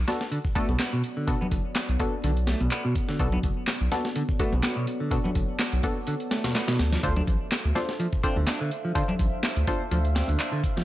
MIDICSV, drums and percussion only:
0, 0, Header, 1, 2, 480
1, 0, Start_track
1, 0, Key_signature, 2, "minor"
1, 0, Tempo, 480000
1, 1276, Time_signature, 4, 2, 24, 8
1, 10840, End_track
2, 0, Start_track
2, 0, Title_t, "Drums"
2, 78, Note_on_c, 9, 38, 51
2, 78, Note_on_c, 9, 42, 64
2, 80, Note_on_c, 9, 63, 84
2, 178, Note_off_c, 9, 38, 0
2, 178, Note_off_c, 9, 42, 0
2, 180, Note_off_c, 9, 63, 0
2, 208, Note_on_c, 9, 38, 52
2, 308, Note_off_c, 9, 38, 0
2, 317, Note_on_c, 9, 42, 86
2, 417, Note_off_c, 9, 42, 0
2, 446, Note_on_c, 9, 36, 91
2, 546, Note_off_c, 9, 36, 0
2, 555, Note_on_c, 9, 36, 90
2, 555, Note_on_c, 9, 42, 64
2, 655, Note_off_c, 9, 36, 0
2, 655, Note_off_c, 9, 42, 0
2, 688, Note_on_c, 9, 63, 96
2, 788, Note_off_c, 9, 63, 0
2, 794, Note_on_c, 9, 39, 103
2, 795, Note_on_c, 9, 38, 120
2, 795, Note_on_c, 9, 42, 86
2, 894, Note_off_c, 9, 39, 0
2, 895, Note_off_c, 9, 38, 0
2, 895, Note_off_c, 9, 42, 0
2, 1037, Note_on_c, 9, 42, 68
2, 1137, Note_off_c, 9, 42, 0
2, 1275, Note_on_c, 9, 42, 88
2, 1276, Note_on_c, 9, 36, 110
2, 1375, Note_off_c, 9, 42, 0
2, 1376, Note_off_c, 9, 36, 0
2, 1421, Note_on_c, 9, 64, 87
2, 1515, Note_on_c, 9, 36, 94
2, 1518, Note_on_c, 9, 42, 67
2, 1521, Note_off_c, 9, 64, 0
2, 1615, Note_off_c, 9, 36, 0
2, 1618, Note_off_c, 9, 42, 0
2, 1755, Note_on_c, 9, 38, 113
2, 1755, Note_on_c, 9, 46, 80
2, 1756, Note_on_c, 9, 39, 108
2, 1855, Note_off_c, 9, 38, 0
2, 1855, Note_off_c, 9, 46, 0
2, 1856, Note_off_c, 9, 39, 0
2, 1887, Note_on_c, 9, 42, 43
2, 1987, Note_off_c, 9, 42, 0
2, 1995, Note_on_c, 9, 36, 95
2, 1997, Note_on_c, 9, 42, 63
2, 2000, Note_on_c, 9, 63, 87
2, 2095, Note_off_c, 9, 36, 0
2, 2097, Note_off_c, 9, 42, 0
2, 2100, Note_off_c, 9, 63, 0
2, 2236, Note_on_c, 9, 42, 86
2, 2336, Note_off_c, 9, 42, 0
2, 2367, Note_on_c, 9, 42, 43
2, 2467, Note_off_c, 9, 42, 0
2, 2470, Note_on_c, 9, 38, 109
2, 2470, Note_on_c, 9, 42, 64
2, 2570, Note_off_c, 9, 38, 0
2, 2570, Note_off_c, 9, 42, 0
2, 2604, Note_on_c, 9, 42, 42
2, 2606, Note_on_c, 9, 63, 88
2, 2704, Note_off_c, 9, 42, 0
2, 2706, Note_off_c, 9, 63, 0
2, 2712, Note_on_c, 9, 39, 109
2, 2713, Note_on_c, 9, 42, 89
2, 2812, Note_off_c, 9, 39, 0
2, 2813, Note_off_c, 9, 42, 0
2, 2954, Note_on_c, 9, 36, 92
2, 2954, Note_on_c, 9, 42, 69
2, 3054, Note_off_c, 9, 36, 0
2, 3054, Note_off_c, 9, 42, 0
2, 3086, Note_on_c, 9, 38, 47
2, 3186, Note_off_c, 9, 38, 0
2, 3195, Note_on_c, 9, 36, 109
2, 3195, Note_on_c, 9, 42, 89
2, 3295, Note_off_c, 9, 36, 0
2, 3295, Note_off_c, 9, 42, 0
2, 3323, Note_on_c, 9, 64, 91
2, 3423, Note_off_c, 9, 64, 0
2, 3434, Note_on_c, 9, 42, 66
2, 3435, Note_on_c, 9, 36, 95
2, 3534, Note_off_c, 9, 42, 0
2, 3535, Note_off_c, 9, 36, 0
2, 3672, Note_on_c, 9, 39, 109
2, 3676, Note_on_c, 9, 38, 110
2, 3676, Note_on_c, 9, 42, 86
2, 3772, Note_off_c, 9, 39, 0
2, 3776, Note_off_c, 9, 38, 0
2, 3776, Note_off_c, 9, 42, 0
2, 3916, Note_on_c, 9, 38, 50
2, 3916, Note_on_c, 9, 42, 63
2, 3917, Note_on_c, 9, 63, 91
2, 4016, Note_off_c, 9, 38, 0
2, 4016, Note_off_c, 9, 42, 0
2, 4016, Note_off_c, 9, 63, 0
2, 4048, Note_on_c, 9, 38, 53
2, 4148, Note_off_c, 9, 38, 0
2, 4155, Note_on_c, 9, 42, 88
2, 4255, Note_off_c, 9, 42, 0
2, 4287, Note_on_c, 9, 36, 92
2, 4387, Note_off_c, 9, 36, 0
2, 4394, Note_on_c, 9, 36, 90
2, 4396, Note_on_c, 9, 42, 63
2, 4494, Note_off_c, 9, 36, 0
2, 4496, Note_off_c, 9, 42, 0
2, 4525, Note_on_c, 9, 63, 99
2, 4625, Note_off_c, 9, 63, 0
2, 4632, Note_on_c, 9, 38, 122
2, 4632, Note_on_c, 9, 42, 87
2, 4633, Note_on_c, 9, 39, 112
2, 4732, Note_off_c, 9, 38, 0
2, 4732, Note_off_c, 9, 42, 0
2, 4733, Note_off_c, 9, 39, 0
2, 4873, Note_on_c, 9, 42, 65
2, 4973, Note_off_c, 9, 42, 0
2, 5113, Note_on_c, 9, 36, 111
2, 5114, Note_on_c, 9, 42, 85
2, 5213, Note_off_c, 9, 36, 0
2, 5214, Note_off_c, 9, 42, 0
2, 5252, Note_on_c, 9, 64, 92
2, 5352, Note_off_c, 9, 64, 0
2, 5354, Note_on_c, 9, 36, 93
2, 5355, Note_on_c, 9, 42, 68
2, 5454, Note_off_c, 9, 36, 0
2, 5455, Note_off_c, 9, 42, 0
2, 5594, Note_on_c, 9, 38, 113
2, 5594, Note_on_c, 9, 46, 81
2, 5595, Note_on_c, 9, 39, 107
2, 5694, Note_off_c, 9, 38, 0
2, 5694, Note_off_c, 9, 46, 0
2, 5695, Note_off_c, 9, 39, 0
2, 5722, Note_on_c, 9, 42, 43
2, 5822, Note_off_c, 9, 42, 0
2, 5832, Note_on_c, 9, 36, 90
2, 5832, Note_on_c, 9, 42, 66
2, 5837, Note_on_c, 9, 63, 83
2, 5932, Note_off_c, 9, 36, 0
2, 5932, Note_off_c, 9, 42, 0
2, 5937, Note_off_c, 9, 63, 0
2, 6068, Note_on_c, 9, 42, 86
2, 6168, Note_off_c, 9, 42, 0
2, 6200, Note_on_c, 9, 42, 43
2, 6300, Note_off_c, 9, 42, 0
2, 6311, Note_on_c, 9, 38, 103
2, 6311, Note_on_c, 9, 42, 75
2, 6411, Note_off_c, 9, 38, 0
2, 6411, Note_off_c, 9, 42, 0
2, 6443, Note_on_c, 9, 38, 105
2, 6443, Note_on_c, 9, 42, 77
2, 6448, Note_on_c, 9, 63, 88
2, 6543, Note_off_c, 9, 38, 0
2, 6543, Note_off_c, 9, 42, 0
2, 6548, Note_off_c, 9, 63, 0
2, 6551, Note_on_c, 9, 38, 104
2, 6551, Note_on_c, 9, 42, 80
2, 6556, Note_on_c, 9, 39, 104
2, 6651, Note_off_c, 9, 38, 0
2, 6651, Note_off_c, 9, 42, 0
2, 6656, Note_off_c, 9, 39, 0
2, 6681, Note_on_c, 9, 38, 104
2, 6681, Note_on_c, 9, 42, 76
2, 6781, Note_off_c, 9, 38, 0
2, 6781, Note_off_c, 9, 42, 0
2, 6793, Note_on_c, 9, 38, 101
2, 6793, Note_on_c, 9, 42, 77
2, 6893, Note_off_c, 9, 38, 0
2, 6893, Note_off_c, 9, 42, 0
2, 6926, Note_on_c, 9, 38, 104
2, 6926, Note_on_c, 9, 42, 79
2, 7026, Note_off_c, 9, 38, 0
2, 7026, Note_off_c, 9, 42, 0
2, 7034, Note_on_c, 9, 36, 108
2, 7035, Note_on_c, 9, 42, 86
2, 7134, Note_off_c, 9, 36, 0
2, 7135, Note_off_c, 9, 42, 0
2, 7164, Note_on_c, 9, 64, 91
2, 7264, Note_off_c, 9, 64, 0
2, 7275, Note_on_c, 9, 36, 95
2, 7276, Note_on_c, 9, 42, 68
2, 7375, Note_off_c, 9, 36, 0
2, 7376, Note_off_c, 9, 42, 0
2, 7516, Note_on_c, 9, 39, 105
2, 7518, Note_on_c, 9, 38, 114
2, 7518, Note_on_c, 9, 42, 87
2, 7616, Note_off_c, 9, 39, 0
2, 7618, Note_off_c, 9, 38, 0
2, 7618, Note_off_c, 9, 42, 0
2, 7756, Note_on_c, 9, 63, 90
2, 7759, Note_on_c, 9, 38, 50
2, 7759, Note_on_c, 9, 42, 66
2, 7856, Note_off_c, 9, 63, 0
2, 7859, Note_off_c, 9, 38, 0
2, 7859, Note_off_c, 9, 42, 0
2, 7886, Note_on_c, 9, 38, 52
2, 7986, Note_off_c, 9, 38, 0
2, 7997, Note_on_c, 9, 42, 87
2, 8097, Note_off_c, 9, 42, 0
2, 8126, Note_on_c, 9, 36, 94
2, 8226, Note_off_c, 9, 36, 0
2, 8235, Note_on_c, 9, 42, 65
2, 8236, Note_on_c, 9, 36, 94
2, 8335, Note_off_c, 9, 42, 0
2, 8336, Note_off_c, 9, 36, 0
2, 8364, Note_on_c, 9, 63, 80
2, 8464, Note_off_c, 9, 63, 0
2, 8472, Note_on_c, 9, 38, 121
2, 8472, Note_on_c, 9, 42, 88
2, 8475, Note_on_c, 9, 39, 107
2, 8572, Note_off_c, 9, 38, 0
2, 8572, Note_off_c, 9, 42, 0
2, 8575, Note_off_c, 9, 39, 0
2, 8715, Note_on_c, 9, 42, 67
2, 8815, Note_off_c, 9, 42, 0
2, 8954, Note_on_c, 9, 36, 108
2, 8954, Note_on_c, 9, 42, 89
2, 9054, Note_off_c, 9, 36, 0
2, 9054, Note_off_c, 9, 42, 0
2, 9089, Note_on_c, 9, 64, 90
2, 9189, Note_off_c, 9, 64, 0
2, 9192, Note_on_c, 9, 42, 69
2, 9194, Note_on_c, 9, 36, 96
2, 9292, Note_off_c, 9, 42, 0
2, 9294, Note_off_c, 9, 36, 0
2, 9431, Note_on_c, 9, 38, 111
2, 9431, Note_on_c, 9, 46, 79
2, 9438, Note_on_c, 9, 39, 96
2, 9531, Note_off_c, 9, 38, 0
2, 9531, Note_off_c, 9, 46, 0
2, 9538, Note_off_c, 9, 39, 0
2, 9565, Note_on_c, 9, 42, 44
2, 9665, Note_off_c, 9, 42, 0
2, 9673, Note_on_c, 9, 42, 65
2, 9674, Note_on_c, 9, 36, 91
2, 9676, Note_on_c, 9, 63, 82
2, 9773, Note_off_c, 9, 42, 0
2, 9774, Note_off_c, 9, 36, 0
2, 9776, Note_off_c, 9, 63, 0
2, 9914, Note_on_c, 9, 42, 90
2, 10014, Note_off_c, 9, 42, 0
2, 10047, Note_on_c, 9, 42, 44
2, 10147, Note_off_c, 9, 42, 0
2, 10159, Note_on_c, 9, 38, 110
2, 10159, Note_on_c, 9, 42, 63
2, 10259, Note_off_c, 9, 38, 0
2, 10259, Note_off_c, 9, 42, 0
2, 10279, Note_on_c, 9, 63, 79
2, 10289, Note_on_c, 9, 42, 43
2, 10379, Note_off_c, 9, 63, 0
2, 10389, Note_off_c, 9, 42, 0
2, 10396, Note_on_c, 9, 39, 99
2, 10396, Note_on_c, 9, 42, 89
2, 10496, Note_off_c, 9, 39, 0
2, 10496, Note_off_c, 9, 42, 0
2, 10636, Note_on_c, 9, 36, 92
2, 10638, Note_on_c, 9, 42, 64
2, 10736, Note_off_c, 9, 36, 0
2, 10738, Note_off_c, 9, 42, 0
2, 10773, Note_on_c, 9, 38, 49
2, 10840, Note_off_c, 9, 38, 0
2, 10840, End_track
0, 0, End_of_file